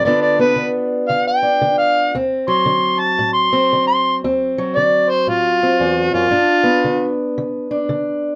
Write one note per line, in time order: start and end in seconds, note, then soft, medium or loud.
0.05 0.54 G2 medium
0.05 0.55 D3 medium
0.05 0.38 B3 medium
0.05 1.42 D4 medium
0.05 2.13 F4 medium
0.05 0.21 D5 medium
0.22 0.39 D5 medium
0.39 2.12 B3 medium
0.39 0.68 B4 loud
0.56 1.06 D3 medium
1.09 1.58 D3 medium
1.09 1.26 F5 medium
1.28 1.78 G5 medium
1.43 2.15 D4 medium
1.62 2.11 D3 medium
1.78 2.13 F5 loud
2.15 2.63 D2 medium
2.15 3.51 C4 medium
2.48 4.57 F#3 medium
2.48 3.01 C6 medium
2.66 3.15 D3 medium
3.00 3.33 A5 medium
3.19 3.67 A2 medium
3.34 3.86 C6 medium
3.53 4.21 C4 medium
3.73 4.20 D3 medium
3.87 4.16 C6 medium
4.24 4.72 D2 medium
4.24 5.62 C4 medium
4.58 6.32 F#3 medium
4.76 5.25 D3 medium
4.76 5.11 D5 loud
5.10 5.28 C5 loud
5.27 5.76 A2 medium
5.27 6.12 F4 medium
5.63 6.30 C4 medium
5.80 6.13 E2 medium
6.14 6.30 F#2 medium
6.14 7.14 F4 medium
6.31 6.80 G2 medium
6.31 7.70 D4 medium
6.64 8.35 B3 medium
6.84 7.32 D3 medium
7.38 7.85 D3 medium
7.71 8.35 D4 medium
7.89 8.35 D3 medium